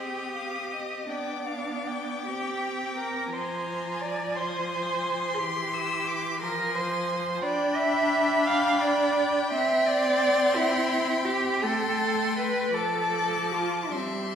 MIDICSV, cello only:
0, 0, Header, 1, 2, 480
1, 0, Start_track
1, 0, Key_signature, -3, "minor"
1, 0, Tempo, 750939
1, 704, Time_signature, 6, 3, 24, 8
1, 1679, Tempo, 688073
1, 5041, Key_signature, 0, "major"
1, 5999, Tempo, 700935
1, 7439, Tempo, 738007
1, 8879, Tempo, 809717
1, 9599, End_track
2, 0, Start_track
2, 0, Title_t, "Cello"
2, 0, Program_c, 0, 42
2, 0, Note_on_c, 0, 67, 74
2, 694, Note_off_c, 0, 67, 0
2, 698, Note_on_c, 0, 62, 66
2, 1428, Note_off_c, 0, 62, 0
2, 1448, Note_on_c, 0, 67, 72
2, 1912, Note_off_c, 0, 67, 0
2, 1916, Note_on_c, 0, 70, 73
2, 2164, Note_on_c, 0, 72, 70
2, 2174, Note_off_c, 0, 70, 0
2, 2643, Note_on_c, 0, 74, 83
2, 2653, Note_off_c, 0, 72, 0
2, 2887, Note_on_c, 0, 72, 93
2, 2897, Note_off_c, 0, 74, 0
2, 3575, Note_on_c, 0, 68, 62
2, 3585, Note_off_c, 0, 72, 0
2, 3605, Note_on_c, 0, 67, 83
2, 3616, Note_off_c, 0, 68, 0
2, 4320, Note_off_c, 0, 67, 0
2, 4324, Note_on_c, 0, 70, 97
2, 4559, Note_on_c, 0, 72, 88
2, 4569, Note_off_c, 0, 70, 0
2, 5024, Note_on_c, 0, 74, 96
2, 5034, Note_off_c, 0, 72, 0
2, 5265, Note_on_c, 0, 76, 108
2, 5275, Note_off_c, 0, 74, 0
2, 5752, Note_on_c, 0, 77, 108
2, 5763, Note_off_c, 0, 76, 0
2, 5987, Note_on_c, 0, 74, 104
2, 5997, Note_off_c, 0, 77, 0
2, 6468, Note_off_c, 0, 74, 0
2, 6472, Note_on_c, 0, 76, 102
2, 6712, Note_on_c, 0, 74, 115
2, 6722, Note_off_c, 0, 76, 0
2, 7186, Note_on_c, 0, 64, 105
2, 7196, Note_off_c, 0, 74, 0
2, 7653, Note_on_c, 0, 67, 96
2, 7663, Note_off_c, 0, 64, 0
2, 7898, Note_on_c, 0, 69, 104
2, 7908, Note_off_c, 0, 67, 0
2, 8374, Note_on_c, 0, 71, 96
2, 8383, Note_off_c, 0, 69, 0
2, 8624, Note_on_c, 0, 69, 97
2, 8634, Note_off_c, 0, 71, 0
2, 9114, Note_on_c, 0, 65, 83
2, 9123, Note_off_c, 0, 69, 0
2, 9356, Note_on_c, 0, 60, 72
2, 9365, Note_off_c, 0, 65, 0
2, 9599, Note_off_c, 0, 60, 0
2, 9599, End_track
0, 0, End_of_file